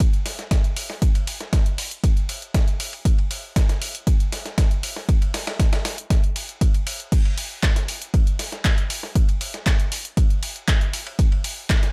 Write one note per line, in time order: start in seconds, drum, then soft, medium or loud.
0.00 kick loud
0.00 closed hi-hat medium
0.00 ride medium
0.13 closed hi-hat soft
0.26 snare soft
0.26 open hi-hat loud
0.26 ride medium
0.39 snare soft
0.39 closed hi-hat soft
0.51 kick loud
0.51 snare loud
0.51 closed hi-hat medium
0.51 ride medium
0.64 closed hi-hat soft
0.77 open hi-hat loud
0.77 ride medium
0.90 snare soft
1.02 kick loud
1.02 closed hi-hat medium
1.02 ride medium
1.15 closed hi-hat soft
1.15 ride soft
1.27 open hi-hat loud
1.27 ride medium
1.41 snare soft
1.41 closed hi-hat soft
1.53 kick loud
1.53 snare loud
1.53 closed hi-hat medium
1.53 ride medium
1.66 closed hi-hat medium
1.78 open hi-hat medium
1.78 open hi-hat loud
1.91 closed hi-hat soft
2.04 kick loud
2.04 closed hi-hat medium
2.04 ride medium
2.17 closed hi-hat soft
2.29 open hi-hat loud
2.29 ride medium
2.42 closed hi-hat soft
2.54 kick loud
2.54 snare loud
2.54 closed hi-hat medium
2.54 ride medium
2.68 closed hi-hat soft
2.80 open hi-hat loud
2.80 ride medium
2.93 ride soft
3.05 kick loud
3.05 closed hi-hat medium
3.05 ride medium
3.18 ride soft
3.31 open hi-hat loud
3.31 ride medium
3.56 kick loud
3.56 snare loud
3.56 closed hi-hat medium
3.56 ride medium
3.69 snare medium
3.69 closed hi-hat medium
3.82 open hi-hat loud
3.82 ride medium
3.95 closed hi-hat medium
4.07 kick loud
4.07 closed hi-hat medium
4.07 ride medium
4.20 closed hi-hat soft
4.32 snare soft
4.32 open hi-hat loud
4.32 ride medium
4.46 snare soft
4.46 closed hi-hat soft
4.58 kick loud
4.58 snare loud
4.58 closed hi-hat medium
4.58 ride medium
4.71 closed hi-hat soft
4.83 open hi-hat loud
4.83 ride medium
4.96 snare soft
5.09 kick loud
5.09 closed hi-hat medium
5.09 ride medium
5.22 closed hi-hat soft
5.22 ride soft
5.34 snare loud
5.34 open hi-hat loud
5.34 ride medium
5.47 snare loud
5.47 closed hi-hat soft
5.47 ride medium
5.60 kick loud
5.60 snare loud
5.60 closed hi-hat medium
5.60 ride medium
5.73 snare loud
5.73 closed hi-hat medium
5.73 ride medium
5.85 snare loud
5.85 open hi-hat loud
5.85 ride medium
5.98 closed hi-hat medium
6.10 kick loud
6.10 snare loud
6.10 closed hi-hat medium
6.10 ride medium
6.24 closed hi-hat soft
6.36 open hi-hat medium
6.36 ride medium
6.49 closed hi-hat soft
6.61 kick loud
6.61 closed hi-hat medium
6.61 ride medium
6.74 closed hi-hat soft
6.74 ride soft
6.87 open hi-hat loud
6.87 ride medium
7.00 closed hi-hat soft
7.12 kick loud
7.12 closed hi-hat medium
7.12 ride medium
7.12 crash medium
7.25 ride soft
7.38 open hi-hat loud
7.38 ride medium
7.63 kick loud
7.63 snare loud
7.63 clap loud
7.63 closed hi-hat medium
7.63 ride medium
7.76 snare medium
7.76 closed hi-hat medium
7.88 open hi-hat loud
7.88 ride medium
8.02 closed hi-hat medium
8.14 kick loud
8.14 closed hi-hat medium
8.14 ride medium
8.27 closed hi-hat soft
8.39 snare soft
8.39 open hi-hat loud
8.39 ride medium
8.52 snare soft
8.52 closed hi-hat soft
8.65 kick loud
8.65 snare loud
8.65 clap loud
8.65 closed hi-hat medium
8.65 ride medium
8.78 closed hi-hat soft
8.90 open hi-hat loud
8.90 ride medium
9.03 snare soft
9.15 kick loud
9.15 closed hi-hat medium
9.15 ride medium
9.29 closed hi-hat soft
9.29 ride soft
9.41 open hi-hat loud
9.41 ride medium
9.54 snare soft
9.54 closed hi-hat soft
9.66 kick loud
9.66 snare loud
9.66 clap loud
9.66 closed hi-hat medium
9.66 ride medium
9.80 closed hi-hat medium
9.92 open hi-hat medium
9.92 open hi-hat loud
10.05 closed hi-hat medium
10.17 kick loud
10.17 closed hi-hat medium
10.17 ride medium
10.30 closed hi-hat soft
10.43 open hi-hat loud
10.43 ride medium
10.56 closed hi-hat soft
10.68 kick loud
10.68 snare loud
10.68 clap loud
10.68 closed hi-hat medium
10.68 ride medium
10.81 closed hi-hat soft
10.93 open hi-hat loud
10.93 ride medium
11.07 ride soft
11.19 kick loud
11.19 closed hi-hat medium
11.19 ride medium
11.32 ride soft
11.44 open hi-hat loud
11.44 ride medium
11.70 kick loud
11.70 snare loud
11.70 clap loud
11.70 closed hi-hat medium
11.70 ride medium
11.83 snare medium
11.83 closed hi-hat medium